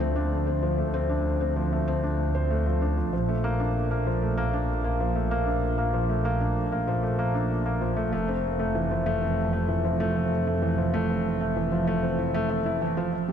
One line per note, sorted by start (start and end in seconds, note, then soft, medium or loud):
0.00 3.10 D2 medium
0.00 0.63 F3 medium
0.00 0.78 A3 medium
0.00 0.47 C4 medium
0.00 0.16 D4 medium
0.16 0.31 D4 medium
0.47 0.62 C4 medium
0.63 0.77 F3 medium
0.78 0.93 A3 medium
0.94 1.09 C4 medium
1.09 1.24 D4 medium
1.41 1.56 C4 medium
1.56 1.71 F3 medium
1.72 1.87 A3 medium
1.88 2.03 C4 medium
2.04 2.18 D4 medium
2.35 2.49 C5 medium
2.50 2.65 A3 medium
2.66 2.81 F3 medium
2.82 2.96 D4 medium
2.97 3.11 F3 medium
3.13 8.09 A#1 medium
3.13 3.28 F3 medium
3.29 3.43 A3 medium
3.44 3.59 A#3 medium
3.60 3.74 D4 medium
3.91 4.06 A#3 medium
4.06 4.21 F3 medium
4.22 4.37 A3 medium
4.38 4.52 A#3 medium
4.53 4.68 D4 medium
4.84 4.99 A#3 medium
5.00 5.15 F3 medium
5.16 5.31 A3 medium
5.31 5.46 A#3 medium
5.47 5.62 D4 medium
5.78 5.93 A#3 medium
5.93 6.08 F3 medium
6.09 6.24 A3 medium
6.25 6.40 A#3 medium
6.41 6.56 D4 medium
6.72 6.87 A#3 medium
6.88 7.02 F3 medium
7.03 7.18 A3 medium
7.19 7.34 A#3 medium
7.35 7.49 D4 medium
7.66 7.81 A#3 medium
7.81 7.96 F3 medium
7.97 8.11 A3 medium
8.12 13.09 F1 medium
8.12 8.27 A3 medium
8.28 8.43 C4 medium
8.59 8.74 A3 medium
8.75 8.90 E3 medium
8.91 9.06 F3 medium
9.06 9.21 A3 loud
9.22 9.37 C4 medium
9.53 9.68 A3 medium
9.68 9.84 E3 medium
9.84 9.99 F3 medium
10.00 10.15 A3 medium
10.16 10.31 C4 medium
10.47 10.62 A3 medium
10.62 10.77 E3 medium
10.78 10.93 F3 medium
10.94 11.09 A3 medium
11.09 11.24 C4 medium
11.41 11.56 A3 medium
11.56 11.71 E3 medium
11.72 11.87 F3 medium
11.87 12.02 A3 medium
12.03 12.18 C4 medium
12.19 12.34 E4 medium
12.34 12.43 A3 loud
12.50 12.59 A3 medium
12.66 12.81 E4 medium
12.81 12.96 E3 medium
12.97 13.06 F3 medium
13.13 13.28 F3 medium
13.28 13.32 G3 medium